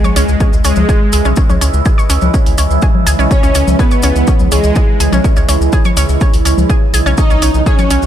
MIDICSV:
0, 0, Header, 1, 8, 480
1, 0, Start_track
1, 0, Key_signature, 4, "minor"
1, 0, Tempo, 483871
1, 1362, Time_signature, 4, 2, 24, 8
1, 7999, End_track
2, 0, Start_track
2, 0, Title_t, "Synth arpeggio sound"
2, 0, Program_c, 0, 84
2, 44, Note_on_c, 0, 73, 76
2, 44, Note_on_c, 0, 85, 55
2, 98, Note_off_c, 0, 73, 0
2, 98, Note_off_c, 0, 85, 0
2, 161, Note_on_c, 0, 61, 104
2, 161, Note_on_c, 0, 73, 72
2, 218, Note_off_c, 0, 61, 0
2, 218, Note_off_c, 0, 73, 0
2, 401, Note_on_c, 0, 61, 82
2, 401, Note_on_c, 0, 73, 58
2, 518, Note_off_c, 0, 61, 0
2, 518, Note_off_c, 0, 73, 0
2, 640, Note_on_c, 0, 73, 53
2, 641, Note_on_c, 0, 61, 78
2, 698, Note_off_c, 0, 61, 0
2, 698, Note_off_c, 0, 73, 0
2, 881, Note_on_c, 0, 68, 82
2, 881, Note_on_c, 0, 80, 57
2, 976, Note_off_c, 0, 68, 0
2, 976, Note_off_c, 0, 80, 0
2, 1120, Note_on_c, 0, 68, 80
2, 1120, Note_on_c, 0, 80, 57
2, 1177, Note_off_c, 0, 68, 0
2, 1178, Note_off_c, 0, 80, 0
2, 1242, Note_on_c, 0, 73, 73
2, 1243, Note_on_c, 0, 61, 106
2, 1298, Note_off_c, 0, 61, 0
2, 1298, Note_off_c, 0, 73, 0
2, 1360, Note_on_c, 0, 61, 82
2, 1360, Note_on_c, 0, 73, 58
2, 1418, Note_off_c, 0, 61, 0
2, 1418, Note_off_c, 0, 73, 0
2, 1483, Note_on_c, 0, 61, 79
2, 1483, Note_on_c, 0, 73, 55
2, 1538, Note_off_c, 0, 61, 0
2, 1538, Note_off_c, 0, 73, 0
2, 1600, Note_on_c, 0, 61, 79
2, 1600, Note_on_c, 0, 73, 55
2, 1695, Note_off_c, 0, 61, 0
2, 1695, Note_off_c, 0, 73, 0
2, 1840, Note_on_c, 0, 68, 84
2, 1840, Note_on_c, 0, 80, 60
2, 1936, Note_off_c, 0, 68, 0
2, 1936, Note_off_c, 0, 80, 0
2, 1963, Note_on_c, 0, 73, 79
2, 1963, Note_on_c, 0, 85, 55
2, 2018, Note_off_c, 0, 73, 0
2, 2018, Note_off_c, 0, 85, 0
2, 2079, Note_on_c, 0, 61, 102
2, 2079, Note_on_c, 0, 73, 70
2, 2137, Note_off_c, 0, 61, 0
2, 2137, Note_off_c, 0, 73, 0
2, 2319, Note_on_c, 0, 61, 81
2, 2320, Note_on_c, 0, 73, 57
2, 2437, Note_off_c, 0, 61, 0
2, 2438, Note_off_c, 0, 73, 0
2, 2559, Note_on_c, 0, 61, 78
2, 2560, Note_on_c, 0, 73, 55
2, 2617, Note_off_c, 0, 61, 0
2, 2617, Note_off_c, 0, 73, 0
2, 2800, Note_on_c, 0, 68, 83
2, 2800, Note_on_c, 0, 80, 58
2, 2895, Note_off_c, 0, 80, 0
2, 2896, Note_off_c, 0, 68, 0
2, 3040, Note_on_c, 0, 80, 54
2, 3041, Note_on_c, 0, 68, 80
2, 3098, Note_off_c, 0, 68, 0
2, 3098, Note_off_c, 0, 80, 0
2, 3164, Note_on_c, 0, 61, 105
2, 3164, Note_on_c, 0, 73, 75
2, 3218, Note_off_c, 0, 61, 0
2, 3218, Note_off_c, 0, 73, 0
2, 3281, Note_on_c, 0, 73, 58
2, 3282, Note_on_c, 0, 61, 85
2, 3338, Note_off_c, 0, 61, 0
2, 3338, Note_off_c, 0, 73, 0
2, 3403, Note_on_c, 0, 73, 55
2, 3404, Note_on_c, 0, 61, 78
2, 3458, Note_off_c, 0, 61, 0
2, 3458, Note_off_c, 0, 73, 0
2, 3521, Note_on_c, 0, 61, 77
2, 3521, Note_on_c, 0, 73, 56
2, 3616, Note_off_c, 0, 61, 0
2, 3616, Note_off_c, 0, 73, 0
2, 3761, Note_on_c, 0, 68, 85
2, 3762, Note_on_c, 0, 80, 61
2, 3856, Note_off_c, 0, 68, 0
2, 3856, Note_off_c, 0, 80, 0
2, 3884, Note_on_c, 0, 73, 79
2, 3884, Note_on_c, 0, 85, 57
2, 3938, Note_off_c, 0, 73, 0
2, 3939, Note_off_c, 0, 85, 0
2, 4002, Note_on_c, 0, 61, 103
2, 4002, Note_on_c, 0, 73, 71
2, 4058, Note_off_c, 0, 73, 0
2, 4059, Note_off_c, 0, 61, 0
2, 4242, Note_on_c, 0, 61, 82
2, 4242, Note_on_c, 0, 73, 58
2, 4359, Note_off_c, 0, 61, 0
2, 4359, Note_off_c, 0, 73, 0
2, 4482, Note_on_c, 0, 61, 76
2, 4482, Note_on_c, 0, 73, 53
2, 4539, Note_off_c, 0, 61, 0
2, 4539, Note_off_c, 0, 73, 0
2, 4723, Note_on_c, 0, 68, 84
2, 4723, Note_on_c, 0, 80, 58
2, 4817, Note_off_c, 0, 68, 0
2, 4817, Note_off_c, 0, 80, 0
2, 4962, Note_on_c, 0, 68, 80
2, 4962, Note_on_c, 0, 80, 56
2, 5019, Note_off_c, 0, 68, 0
2, 5019, Note_off_c, 0, 80, 0
2, 5084, Note_on_c, 0, 61, 104
2, 5084, Note_on_c, 0, 73, 74
2, 5138, Note_off_c, 0, 73, 0
2, 5139, Note_off_c, 0, 61, 0
2, 5201, Note_on_c, 0, 61, 82
2, 5202, Note_on_c, 0, 73, 59
2, 5258, Note_off_c, 0, 61, 0
2, 5258, Note_off_c, 0, 73, 0
2, 5324, Note_on_c, 0, 61, 80
2, 5325, Note_on_c, 0, 73, 56
2, 5379, Note_off_c, 0, 61, 0
2, 5379, Note_off_c, 0, 73, 0
2, 5442, Note_on_c, 0, 61, 79
2, 5442, Note_on_c, 0, 73, 55
2, 5537, Note_off_c, 0, 61, 0
2, 5537, Note_off_c, 0, 73, 0
2, 5683, Note_on_c, 0, 68, 86
2, 5683, Note_on_c, 0, 80, 60
2, 5777, Note_off_c, 0, 68, 0
2, 5777, Note_off_c, 0, 80, 0
2, 5805, Note_on_c, 0, 73, 79
2, 5806, Note_on_c, 0, 85, 57
2, 5859, Note_off_c, 0, 73, 0
2, 5859, Note_off_c, 0, 85, 0
2, 5922, Note_on_c, 0, 61, 103
2, 5922, Note_on_c, 0, 73, 72
2, 5979, Note_off_c, 0, 61, 0
2, 5979, Note_off_c, 0, 73, 0
2, 6162, Note_on_c, 0, 61, 83
2, 6162, Note_on_c, 0, 73, 57
2, 6278, Note_off_c, 0, 61, 0
2, 6279, Note_off_c, 0, 73, 0
2, 6401, Note_on_c, 0, 61, 76
2, 6402, Note_on_c, 0, 73, 54
2, 6458, Note_off_c, 0, 61, 0
2, 6458, Note_off_c, 0, 73, 0
2, 6642, Note_on_c, 0, 68, 80
2, 6642, Note_on_c, 0, 80, 59
2, 6736, Note_off_c, 0, 68, 0
2, 6736, Note_off_c, 0, 80, 0
2, 6882, Note_on_c, 0, 68, 81
2, 6882, Note_on_c, 0, 80, 57
2, 6939, Note_off_c, 0, 68, 0
2, 6939, Note_off_c, 0, 80, 0
2, 7004, Note_on_c, 0, 73, 72
2, 7005, Note_on_c, 0, 61, 106
2, 7058, Note_off_c, 0, 73, 0
2, 7059, Note_off_c, 0, 61, 0
2, 7122, Note_on_c, 0, 61, 84
2, 7122, Note_on_c, 0, 73, 58
2, 7179, Note_off_c, 0, 61, 0
2, 7179, Note_off_c, 0, 73, 0
2, 7245, Note_on_c, 0, 61, 79
2, 7245, Note_on_c, 0, 73, 56
2, 7299, Note_off_c, 0, 61, 0
2, 7299, Note_off_c, 0, 73, 0
2, 7363, Note_on_c, 0, 61, 79
2, 7363, Note_on_c, 0, 73, 53
2, 7457, Note_off_c, 0, 61, 0
2, 7457, Note_off_c, 0, 73, 0
2, 7603, Note_on_c, 0, 68, 86
2, 7603, Note_on_c, 0, 80, 61
2, 7697, Note_off_c, 0, 68, 0
2, 7697, Note_off_c, 0, 80, 0
2, 7725, Note_on_c, 0, 85, 56
2, 7726, Note_on_c, 0, 73, 79
2, 7779, Note_off_c, 0, 73, 0
2, 7779, Note_off_c, 0, 85, 0
2, 7843, Note_on_c, 0, 61, 104
2, 7843, Note_on_c, 0, 73, 71
2, 7899, Note_off_c, 0, 61, 0
2, 7899, Note_off_c, 0, 73, 0
2, 7999, End_track
3, 0, Start_track
3, 0, Title_t, "Synth pluck"
3, 0, Program_c, 1, 84
3, 0, Note_on_c, 1, 68, 94
3, 547, Note_off_c, 1, 68, 0
3, 639, Note_on_c, 1, 68, 94
3, 1507, Note_off_c, 1, 68, 0
3, 3282, Note_on_c, 1, 73, 101
3, 3724, Note_off_c, 1, 73, 0
3, 3760, Note_on_c, 1, 71, 99
3, 4387, Note_off_c, 1, 71, 0
3, 4481, Note_on_c, 1, 68, 94
3, 5348, Note_off_c, 1, 68, 0
3, 7119, Note_on_c, 1, 75, 100
3, 7563, Note_off_c, 1, 75, 0
3, 7602, Note_on_c, 1, 73, 96
3, 7999, Note_off_c, 1, 73, 0
3, 7999, End_track
4, 0, Start_track
4, 0, Title_t, "Supersaw synth"
4, 0, Program_c, 2, 81
4, 0, Note_on_c, 2, 56, 99
4, 547, Note_off_c, 2, 56, 0
4, 639, Note_on_c, 2, 56, 103
4, 1507, Note_off_c, 2, 56, 0
4, 3282, Note_on_c, 2, 61, 105
4, 3724, Note_off_c, 2, 61, 0
4, 3760, Note_on_c, 2, 59, 100
4, 4387, Note_off_c, 2, 59, 0
4, 4481, Note_on_c, 2, 56, 102
4, 5348, Note_off_c, 2, 56, 0
4, 7123, Note_on_c, 2, 63, 103
4, 7565, Note_off_c, 2, 63, 0
4, 7602, Note_on_c, 2, 61, 98
4, 7999, Note_off_c, 2, 61, 0
4, 7999, End_track
5, 0, Start_track
5, 0, Title_t, "Ambient pad"
5, 0, Program_c, 3, 92
5, 0, Note_on_c, 3, 49, 90
5, 0, Note_on_c, 3, 52, 80
5, 0, Note_on_c, 3, 56, 82
5, 0, Note_on_c, 3, 64, 98
5, 7082, Note_off_c, 3, 49, 0
5, 7082, Note_off_c, 3, 64, 0
5, 7083, Note_off_c, 3, 52, 0
5, 7083, Note_off_c, 3, 56, 0
5, 7121, Note_on_c, 3, 54, 81
5, 7121, Note_on_c, 3, 66, 100
5, 7122, Note_on_c, 3, 51, 90
5, 7122, Note_on_c, 3, 59, 82
5, 7999, Note_off_c, 3, 51, 0
5, 7999, Note_off_c, 3, 54, 0
5, 7999, Note_off_c, 3, 59, 0
5, 7999, Note_off_c, 3, 66, 0
5, 7999, End_track
6, 0, Start_track
6, 0, Title_t, "Analog synth bass"
6, 0, Program_c, 4, 38
6, 161, Note_on_c, 4, 37, 95
6, 240, Note_off_c, 4, 37, 0
6, 285, Note_on_c, 4, 37, 85
6, 359, Note_off_c, 4, 37, 0
6, 524, Note_on_c, 4, 37, 82
6, 599, Note_off_c, 4, 37, 0
6, 642, Note_on_c, 4, 37, 92
6, 720, Note_off_c, 4, 37, 0
6, 764, Note_on_c, 4, 37, 83
6, 839, Note_off_c, 4, 37, 0
6, 1122, Note_on_c, 4, 37, 95
6, 1200, Note_off_c, 4, 37, 0
6, 1244, Note_on_c, 4, 35, 83
6, 1319, Note_off_c, 4, 35, 0
6, 1484, Note_on_c, 4, 37, 79
6, 1559, Note_off_c, 4, 37, 0
6, 1602, Note_on_c, 4, 37, 93
6, 1680, Note_off_c, 4, 37, 0
6, 1724, Note_on_c, 4, 37, 83
6, 1799, Note_off_c, 4, 37, 0
6, 2082, Note_on_c, 4, 37, 95
6, 2160, Note_off_c, 4, 37, 0
6, 2205, Note_on_c, 4, 37, 82
6, 2280, Note_off_c, 4, 37, 0
6, 2445, Note_on_c, 4, 37, 82
6, 2520, Note_off_c, 4, 37, 0
6, 2562, Note_on_c, 4, 37, 94
6, 2640, Note_off_c, 4, 37, 0
6, 2685, Note_on_c, 4, 37, 84
6, 2760, Note_off_c, 4, 37, 0
6, 3042, Note_on_c, 4, 37, 97
6, 3120, Note_off_c, 4, 37, 0
6, 3165, Note_on_c, 4, 35, 82
6, 3240, Note_off_c, 4, 35, 0
6, 3405, Note_on_c, 4, 37, 80
6, 3480, Note_off_c, 4, 37, 0
6, 3523, Note_on_c, 4, 37, 95
6, 3601, Note_off_c, 4, 37, 0
6, 3646, Note_on_c, 4, 37, 86
6, 3720, Note_off_c, 4, 37, 0
6, 4003, Note_on_c, 4, 37, 96
6, 4081, Note_off_c, 4, 37, 0
6, 4126, Note_on_c, 4, 37, 83
6, 4200, Note_off_c, 4, 37, 0
6, 4366, Note_on_c, 4, 37, 81
6, 4440, Note_off_c, 4, 37, 0
6, 4483, Note_on_c, 4, 37, 97
6, 4561, Note_off_c, 4, 37, 0
6, 4606, Note_on_c, 4, 37, 83
6, 4680, Note_off_c, 4, 37, 0
6, 4963, Note_on_c, 4, 37, 95
6, 5041, Note_off_c, 4, 37, 0
6, 5085, Note_on_c, 4, 35, 81
6, 5160, Note_off_c, 4, 35, 0
6, 5325, Note_on_c, 4, 37, 81
6, 5400, Note_off_c, 4, 37, 0
6, 5441, Note_on_c, 4, 37, 94
6, 5520, Note_off_c, 4, 37, 0
6, 5564, Note_on_c, 4, 37, 85
6, 5639, Note_off_c, 4, 37, 0
6, 5921, Note_on_c, 4, 37, 92
6, 6000, Note_off_c, 4, 37, 0
6, 6044, Note_on_c, 4, 37, 84
6, 6119, Note_off_c, 4, 37, 0
6, 6284, Note_on_c, 4, 37, 79
6, 6359, Note_off_c, 4, 37, 0
6, 6401, Note_on_c, 4, 37, 95
6, 6480, Note_off_c, 4, 37, 0
6, 6524, Note_on_c, 4, 37, 85
6, 6599, Note_off_c, 4, 37, 0
6, 6882, Note_on_c, 4, 35, 96
6, 6960, Note_off_c, 4, 35, 0
6, 7004, Note_on_c, 4, 35, 81
6, 7079, Note_off_c, 4, 35, 0
6, 7244, Note_on_c, 4, 35, 82
6, 7319, Note_off_c, 4, 35, 0
6, 7362, Note_on_c, 4, 35, 96
6, 7440, Note_off_c, 4, 35, 0
6, 7485, Note_on_c, 4, 35, 83
6, 7560, Note_off_c, 4, 35, 0
6, 7843, Note_on_c, 4, 35, 96
6, 7921, Note_off_c, 4, 35, 0
6, 7965, Note_on_c, 4, 35, 84
6, 7999, Note_off_c, 4, 35, 0
6, 7999, End_track
7, 0, Start_track
7, 0, Title_t, "Sub drop"
7, 0, Program_c, 5, 103
7, 0, Note_on_c, 5, 60, 75
7, 1362, Note_off_c, 5, 60, 0
7, 7999, End_track
8, 0, Start_track
8, 0, Title_t, "Drums"
8, 42, Note_on_c, 9, 70, 39
8, 43, Note_on_c, 9, 64, 99
8, 142, Note_off_c, 9, 64, 0
8, 142, Note_off_c, 9, 70, 0
8, 160, Note_on_c, 9, 46, 107
8, 165, Note_on_c, 9, 70, 88
8, 260, Note_off_c, 9, 46, 0
8, 264, Note_off_c, 9, 70, 0
8, 281, Note_on_c, 9, 70, 43
8, 380, Note_off_c, 9, 70, 0
8, 398, Note_on_c, 9, 70, 48
8, 402, Note_on_c, 9, 36, 121
8, 497, Note_off_c, 9, 70, 0
8, 501, Note_off_c, 9, 36, 0
8, 526, Note_on_c, 9, 70, 39
8, 625, Note_off_c, 9, 70, 0
8, 638, Note_on_c, 9, 70, 88
8, 641, Note_on_c, 9, 46, 105
8, 737, Note_off_c, 9, 70, 0
8, 740, Note_off_c, 9, 46, 0
8, 751, Note_on_c, 9, 70, 37
8, 765, Note_on_c, 9, 64, 96
8, 851, Note_off_c, 9, 70, 0
8, 864, Note_off_c, 9, 64, 0
8, 882, Note_on_c, 9, 36, 121
8, 884, Note_on_c, 9, 70, 50
8, 981, Note_off_c, 9, 36, 0
8, 983, Note_off_c, 9, 70, 0
8, 1115, Note_on_c, 9, 70, 96
8, 1121, Note_on_c, 9, 46, 105
8, 1214, Note_off_c, 9, 70, 0
8, 1220, Note_off_c, 9, 46, 0
8, 1240, Note_on_c, 9, 70, 42
8, 1339, Note_off_c, 9, 70, 0
8, 1349, Note_on_c, 9, 70, 53
8, 1362, Note_on_c, 9, 36, 127
8, 1449, Note_off_c, 9, 70, 0
8, 1461, Note_off_c, 9, 36, 0
8, 1484, Note_on_c, 9, 64, 100
8, 1485, Note_on_c, 9, 70, 38
8, 1583, Note_off_c, 9, 64, 0
8, 1584, Note_off_c, 9, 70, 0
8, 1601, Note_on_c, 9, 46, 109
8, 1604, Note_on_c, 9, 70, 104
8, 1700, Note_off_c, 9, 46, 0
8, 1704, Note_off_c, 9, 70, 0
8, 1721, Note_on_c, 9, 70, 45
8, 1820, Note_off_c, 9, 70, 0
8, 1837, Note_on_c, 9, 70, 58
8, 1842, Note_on_c, 9, 36, 127
8, 1936, Note_off_c, 9, 70, 0
8, 1941, Note_off_c, 9, 36, 0
8, 1974, Note_on_c, 9, 70, 40
8, 2073, Note_off_c, 9, 70, 0
8, 2080, Note_on_c, 9, 70, 99
8, 2081, Note_on_c, 9, 46, 112
8, 2179, Note_off_c, 9, 70, 0
8, 2180, Note_off_c, 9, 46, 0
8, 2197, Note_on_c, 9, 70, 39
8, 2204, Note_on_c, 9, 64, 99
8, 2296, Note_off_c, 9, 70, 0
8, 2303, Note_off_c, 9, 64, 0
8, 2321, Note_on_c, 9, 70, 51
8, 2322, Note_on_c, 9, 36, 125
8, 2420, Note_off_c, 9, 70, 0
8, 2421, Note_off_c, 9, 36, 0
8, 2444, Note_on_c, 9, 46, 65
8, 2444, Note_on_c, 9, 70, 35
8, 2544, Note_off_c, 9, 46, 0
8, 2544, Note_off_c, 9, 70, 0
8, 2558, Note_on_c, 9, 70, 98
8, 2561, Note_on_c, 9, 46, 116
8, 2657, Note_off_c, 9, 70, 0
8, 2660, Note_off_c, 9, 46, 0
8, 2684, Note_on_c, 9, 70, 41
8, 2783, Note_off_c, 9, 70, 0
8, 2793, Note_on_c, 9, 70, 52
8, 2802, Note_on_c, 9, 36, 123
8, 2892, Note_off_c, 9, 70, 0
8, 2901, Note_off_c, 9, 36, 0
8, 2924, Note_on_c, 9, 64, 100
8, 3023, Note_off_c, 9, 64, 0
8, 3042, Note_on_c, 9, 46, 111
8, 3044, Note_on_c, 9, 70, 101
8, 3141, Note_off_c, 9, 46, 0
8, 3143, Note_off_c, 9, 70, 0
8, 3170, Note_on_c, 9, 70, 40
8, 3269, Note_off_c, 9, 70, 0
8, 3282, Note_on_c, 9, 36, 127
8, 3284, Note_on_c, 9, 70, 51
8, 3381, Note_off_c, 9, 36, 0
8, 3383, Note_off_c, 9, 70, 0
8, 3406, Note_on_c, 9, 70, 42
8, 3505, Note_off_c, 9, 70, 0
8, 3519, Note_on_c, 9, 70, 98
8, 3522, Note_on_c, 9, 46, 108
8, 3618, Note_off_c, 9, 70, 0
8, 3621, Note_off_c, 9, 46, 0
8, 3645, Note_on_c, 9, 64, 96
8, 3647, Note_on_c, 9, 70, 47
8, 3744, Note_off_c, 9, 64, 0
8, 3746, Note_off_c, 9, 70, 0
8, 3762, Note_on_c, 9, 36, 127
8, 3764, Note_on_c, 9, 70, 51
8, 3861, Note_off_c, 9, 36, 0
8, 3864, Note_off_c, 9, 70, 0
8, 3879, Note_on_c, 9, 70, 39
8, 3978, Note_off_c, 9, 70, 0
8, 3992, Note_on_c, 9, 70, 109
8, 4003, Note_on_c, 9, 46, 114
8, 4091, Note_off_c, 9, 70, 0
8, 4102, Note_off_c, 9, 46, 0
8, 4123, Note_on_c, 9, 70, 40
8, 4222, Note_off_c, 9, 70, 0
8, 4237, Note_on_c, 9, 70, 50
8, 4242, Note_on_c, 9, 36, 127
8, 4336, Note_off_c, 9, 70, 0
8, 4342, Note_off_c, 9, 36, 0
8, 4358, Note_on_c, 9, 70, 37
8, 4365, Note_on_c, 9, 64, 93
8, 4458, Note_off_c, 9, 70, 0
8, 4464, Note_off_c, 9, 64, 0
8, 4480, Note_on_c, 9, 70, 98
8, 4483, Note_on_c, 9, 46, 113
8, 4579, Note_off_c, 9, 70, 0
8, 4582, Note_off_c, 9, 46, 0
8, 4598, Note_on_c, 9, 70, 42
8, 4697, Note_off_c, 9, 70, 0
8, 4716, Note_on_c, 9, 70, 51
8, 4722, Note_on_c, 9, 36, 120
8, 4815, Note_off_c, 9, 70, 0
8, 4822, Note_off_c, 9, 36, 0
8, 4962, Note_on_c, 9, 70, 102
8, 4963, Note_on_c, 9, 46, 112
8, 5062, Note_off_c, 9, 46, 0
8, 5062, Note_off_c, 9, 70, 0
8, 5085, Note_on_c, 9, 64, 95
8, 5085, Note_on_c, 9, 70, 41
8, 5184, Note_off_c, 9, 64, 0
8, 5185, Note_off_c, 9, 70, 0
8, 5202, Note_on_c, 9, 36, 125
8, 5205, Note_on_c, 9, 70, 49
8, 5301, Note_off_c, 9, 36, 0
8, 5304, Note_off_c, 9, 70, 0
8, 5321, Note_on_c, 9, 70, 38
8, 5421, Note_off_c, 9, 70, 0
8, 5442, Note_on_c, 9, 46, 109
8, 5445, Note_on_c, 9, 70, 101
8, 5541, Note_off_c, 9, 46, 0
8, 5544, Note_off_c, 9, 70, 0
8, 5570, Note_on_c, 9, 70, 43
8, 5669, Note_off_c, 9, 70, 0
8, 5677, Note_on_c, 9, 70, 60
8, 5682, Note_on_c, 9, 36, 121
8, 5776, Note_off_c, 9, 70, 0
8, 5781, Note_off_c, 9, 36, 0
8, 5801, Note_on_c, 9, 70, 34
8, 5805, Note_on_c, 9, 64, 94
8, 5900, Note_off_c, 9, 70, 0
8, 5904, Note_off_c, 9, 64, 0
8, 5921, Note_on_c, 9, 70, 107
8, 5922, Note_on_c, 9, 46, 113
8, 6020, Note_off_c, 9, 70, 0
8, 6021, Note_off_c, 9, 46, 0
8, 6041, Note_on_c, 9, 70, 44
8, 6140, Note_off_c, 9, 70, 0
8, 6158, Note_on_c, 9, 70, 57
8, 6162, Note_on_c, 9, 36, 124
8, 6257, Note_off_c, 9, 70, 0
8, 6261, Note_off_c, 9, 36, 0
8, 6285, Note_on_c, 9, 46, 64
8, 6286, Note_on_c, 9, 70, 38
8, 6384, Note_off_c, 9, 46, 0
8, 6385, Note_off_c, 9, 70, 0
8, 6402, Note_on_c, 9, 46, 112
8, 6411, Note_on_c, 9, 70, 105
8, 6501, Note_off_c, 9, 46, 0
8, 6510, Note_off_c, 9, 70, 0
8, 6525, Note_on_c, 9, 64, 94
8, 6527, Note_on_c, 9, 70, 45
8, 6624, Note_off_c, 9, 64, 0
8, 6626, Note_off_c, 9, 70, 0
8, 6642, Note_on_c, 9, 36, 118
8, 6642, Note_on_c, 9, 70, 59
8, 6741, Note_off_c, 9, 36, 0
8, 6741, Note_off_c, 9, 70, 0
8, 6882, Note_on_c, 9, 46, 112
8, 6885, Note_on_c, 9, 70, 89
8, 6981, Note_off_c, 9, 46, 0
8, 6984, Note_off_c, 9, 70, 0
8, 7010, Note_on_c, 9, 70, 38
8, 7109, Note_off_c, 9, 70, 0
8, 7118, Note_on_c, 9, 70, 53
8, 7122, Note_on_c, 9, 36, 122
8, 7217, Note_off_c, 9, 70, 0
8, 7221, Note_off_c, 9, 36, 0
8, 7245, Note_on_c, 9, 70, 39
8, 7344, Note_off_c, 9, 70, 0
8, 7361, Note_on_c, 9, 70, 93
8, 7362, Note_on_c, 9, 46, 106
8, 7461, Note_off_c, 9, 46, 0
8, 7461, Note_off_c, 9, 70, 0
8, 7484, Note_on_c, 9, 70, 38
8, 7583, Note_off_c, 9, 70, 0
8, 7602, Note_on_c, 9, 36, 119
8, 7602, Note_on_c, 9, 70, 50
8, 7701, Note_off_c, 9, 36, 0
8, 7701, Note_off_c, 9, 70, 0
8, 7723, Note_on_c, 9, 70, 37
8, 7725, Note_on_c, 9, 64, 92
8, 7823, Note_off_c, 9, 70, 0
8, 7824, Note_off_c, 9, 64, 0
8, 7842, Note_on_c, 9, 46, 109
8, 7843, Note_on_c, 9, 70, 99
8, 7941, Note_off_c, 9, 46, 0
8, 7942, Note_off_c, 9, 70, 0
8, 7958, Note_on_c, 9, 70, 40
8, 7999, Note_off_c, 9, 70, 0
8, 7999, End_track
0, 0, End_of_file